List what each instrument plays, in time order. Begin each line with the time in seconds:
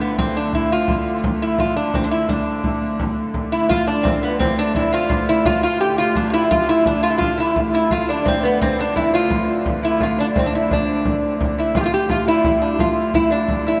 Already playing: hurdy-gurdy D3 A3
0.01 resonator guitar played with a steel bar B3
0.18 resonator guitar played with a steel bar C4, frame drum
0.37 resonator guitar played with a steel bar D4
0.53 resonator guitar played with a steel bar E4, frame drum
0.72 resonator guitar played with a steel bar F4
0.88 frame drum
1.06 frame drum
1.24 frame drum
1.42 resonator guitar played with a steel bar E4
1.58 resonator guitar played with a steel bar F4, frame drum
1.76 resonator guitar played with a steel bar D4
1.94 resonator guitar played with a steel bar C4, frame drum
2.04 resonator guitar played with a steel bar D4
2.11 resonator guitar played with a steel bar E4, frame drum
2.29 resonator guitar played with a steel bar D4, frame drum
2.64 frame drum
3.00 frame drum
3.34 hurdy-gurdy D3 A3, frame drum
3.52 resonator guitar played with a steel bar E4, lute E4
3.69 resonator guitar played with a steel bar F4, lute F4, frame drum
3.87 resonator guitar played with a steel bar D4, lute D4
4.03 resonator guitar played with a steel bar C4, frame drum
4.07 lute C4
4.23 resonator guitar played with a steel bar B3, lute B3, frame drum
4.39 resonator guitar played with a steel bar C4, lute C4, frame drum
4.59 lute D4, resonator guitar played with a steel bar D4
4.75 resonator guitar played with a steel bar E4, frame drum
4.93 lute F4, resonator guitar played with a steel bar F4
5.09 lute F4, frame drum
5.28 lute E4, resonator guitar played with a steel bar E4, frame drum
5.45 lute F4, resonator guitar played with a steel bar F4, frame drum
5.63 resonator guitar played with a steel bar F4, lute F4
5.81 resonator guitar played with a steel bar G4, lute G4
5.98 resonator guitar played with a steel bar F4, lute F4
6.15 resonator guitar played with a steel bar D4, frame drum
6.30 resonator guitar played with a steel bar E4 F4, lute E4, frame drum
6.51 lute F4, resonator guitar played with a steel bar F4, frame drum
6.69 lute E4, resonator guitar played with a steel bar E4, frame drum
6.86 resonator guitar played with a steel bar D4, frame drum
7.03 lute F4, resonator guitar played with a steel bar F4
7.11 resonator guitar played with a steel bar E4
7.18 lute F4, resonator guitar played with a steel bar F4, frame drum
7.38 lute E4, resonator guitar played with a steel bar E4
7.56 hurdy-gurdy D3 A3, frame drum
7.74 lute E4, resonator guitar played with a steel bar E4
7.90 lute F4, resonator guitar played with a steel bar F4, frame drum
8.09 lute D4, resonator guitar played with a steel bar D4
8.26 lute C4, resonator guitar played with a steel bar C4, frame drum
8.43 lute B3, resonator guitar played with a steel bar B3, frame drum
8.61 lute C4, resonator guitar played with a steel bar C4, frame drum
8.79 lute D4, resonator guitar played with a steel bar D4
8.96 lute E4, resonator guitar played with a steel bar E4, frame drum
9.14 lute F4, resonator guitar played with a steel bar F4
9.30 frame drum
9.49 frame drum
9.66 frame drum
9.83 lute E4, resonator guitar played with a steel bar E4
10.00 lute F4, resonator guitar played with a steel bar F4, frame drum
10.19 lute D4, resonator guitar played with a steel bar D4
10.36 lute C4, resonator guitar played with a steel bar C4, frame drum
10.46 resonator guitar played with a steel bar D4
10.54 resonator guitar played with a steel bar E4, frame drum
10.71 lute D4, resonator guitar played with a steel bar D4, frame drum
10.88 frame drum
11.05 frame drum
11.23 frame drum
11.41 frame drum
11.58 lute E4, resonator guitar played with a steel bar E4
11.75 hurdy-gurdy D3 A3, lute F4, resonator guitar played with a steel bar F4, frame drum
11.81 lute F4, resonator guitar played with a steel bar G4
11.86 resonator guitar played with a steel bar F4
11.93 lute G4, resonator guitar played with a steel bar G4, frame drum
12.09 lute F4, resonator guitar played with a steel bar F4, frame drum
12.27 lute E4, resonator guitar played with a steel bar E4
12.44 lute E4, frame drum
12.62 resonator guitar played with a steel bar D4
12.79 lute F4, resonator guitar played with a steel bar F4, frame drum
12.96 frame drum
13.14 lute E4, resonator guitar played with a steel bar E4, frame drum
13.31 lute D4, resonator guitar played with a steel bar D4
13.48 frame drum
13.67 lute E4, resonator guitar played with a steel bar E4